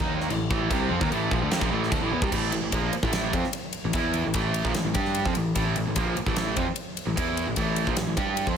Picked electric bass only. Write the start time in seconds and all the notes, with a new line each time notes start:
0.00 D#2
0.30 A1
0.51 A1
0.71 C2
0.91 F2
1.01 D#2
1.11 A1
1.31 A#1
1.42 D2
1.52 D#2
1.62 A#1
1.73 A1
1.92 D2
2.03 A1
2.13 E2
2.22 C2
2.32 A1
2.53 A1
2.62 A1
2.73 A#1
3.03 A1
3.33 F2
3.85 A1
3.93 E2
4.26 A1
4.35 A1
4.65 A#1
4.76 A1
4.85 A1
4.95 G2
5.26 F2
5.37 A1
5.56 A1
5.78 A1
5.87 A1
5.96 A#1
6.18 muted picked electric bass stroke
6.26 A1
6.57 F2
7.07 A1
7.17 E2
7.47 A1
7.57 A1
7.87 A#1
7.97 A1
8.07 A1
8.17 G2
8.47 F2